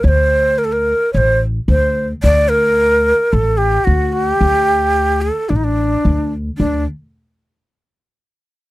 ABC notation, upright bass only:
X:1
M:4/4
L:1/8
Q:1/4=110
K:none
V:1 name="Upright bass" clef=bass
D,,4 A,,,2 D,,2 | D,,4 A,,,2 D,,2 | D,,4 A,,,2 D,,2 | D,, z6 z |]